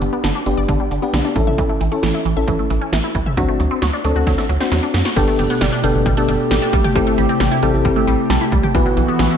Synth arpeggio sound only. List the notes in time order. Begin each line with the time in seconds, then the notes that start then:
0.02 D3
0.13 B3
0.24 D3
0.35 D4
0.46 D3
0.57 D5
0.69 D3
0.80 G3
0.91 D3
1.02 B3
1.14 D3
1.25 D4
1.36 E3
1.47 E5
1.58 E3
1.69 A3
1.81 E3
1.92 C#4
2.03 E3
2.14 E4
2.25 E3
2.37 E5
2.48 E3
2.59 A3
2.70 E3
2.81 C#4
2.93 E3
3.04 E4
3.15 E3
3.26 E5
3.37 F#3
3.49 A3
3.60 F#3
3.71 C4
3.82 F#3
3.93 D4
4.05 F#3
4.16 F#4
4.27 F#3
4.38 A3
4.49 F#3
4.60 C4
4.72 F#3
4.83 D4
4.94 F#3
5.05 F#4
5.16 G3
5.28 A3
5.39 G3
5.50 B3
5.61 G3
5.72 D4
5.84 G3
6.06 G3
6.17 A3
6.28 G3
6.51 G3
6.62 D4
6.73 G3
6.84 G4
6.96 G3
7.07 A3
7.18 G3
7.29 C4
7.40 G3
7.51 E4
7.63 G3
7.85 G3
7.96 A3
8.07 G3
8.30 G3
8.41 E4
8.52 G3
8.63 G4
8.75 E3
8.86 F#3
8.97 E3
9.08 B3
9.19 E3
9.30 E4